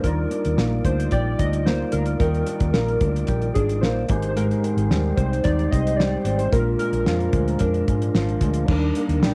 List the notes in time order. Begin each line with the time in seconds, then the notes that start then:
Already playing: A#3 D4
0.01 D#2 G3 D#4 F4 A#4, kick, closed hi-hat
0.06 D5
0.30 D4, closed hi-hat
0.45 D#2, closed hi-hat
0.57 A#1 A#3, snare
0.85 D2 D4 C5, kick, closed hi-hat
1.00 closed hi-hat
1.11 A#1 G4 D5, kick, closed hi-hat
1.39 D2 D4 D#5, kick, closed hi-hat
1.53 closed hi-hat
1.65 A#3 C5, snare
1.92 D2 D4 A#4, closed hi-hat
2.06 closed hi-hat
2.19 D#2 D#3 A#4, kick, closed hi-hat
2.34 closed hi-hat
2.47 D4, closed hi-hat
2.60 D#2, kick, closed hi-hat
2.73 A#1 A#3 A#4, snare
2.88 closed hi-hat
3.00 D2 D4, kick, closed hi-hat
3.16 closed hi-hat
3.27 A#1 G4, kick, closed hi-hat
3.42 closed hi-hat
3.54 G#1 D4 G#4, kick, closed hi-hat
3.69 closed hi-hat
3.81 A#1 A#3 C5, snare
4.07 G#1 G#2 G#3 D#4 G4, kick, closed hi-hat
4.12 C5
4.22 closed hi-hat
4.29 C5
4.36 G#2 A#4, closed hi-hat
4.51 closed hi-hat
4.63 C4, closed hi-hat
4.77 G#1, closed hi-hat
4.90 D#2 G3, snare
5.17 C2 C4 C5, kick, closed hi-hat
5.33 closed hi-hat
5.44 D#2 D#4 D5, kick, closed hi-hat
5.59 closed hi-hat
5.71 C2 C4 D#5, kick, closed hi-hat
5.87 closed hi-hat
5.96 G3 D5, snare
6.24 G#1 C4, closed hi-hat
6.38 C5, closed hi-hat
6.50 A#1 A#2 G#3 C4 F4 A#4, kick, closed hi-hat
6.54 D4 A#4
6.79 G#3 A#4, closed hi-hat
6.92 A#1, closed hi-hat
7.06 F2 F3, snare
7.20 closed hi-hat
7.33 D2 G#3, kick, closed hi-hat
7.48 closed hi-hat
7.59 F2 D4, kick, closed hi-hat
7.74 closed hi-hat
7.88 G#2 G#3, kick, closed hi-hat
8.02 closed hi-hat
8.14 G#1 F3, snare
8.29 closed hi-hat
8.41 D2 G#3, kick, closed hi-hat
8.54 closed hi-hat
8.66 D#2 G3 D4 D#4, kick, crash
8.71 A#4
8.95 A#3, closed hi-hat
9.09 D#2, closed hi-hat
9.23 A#1 G3, snare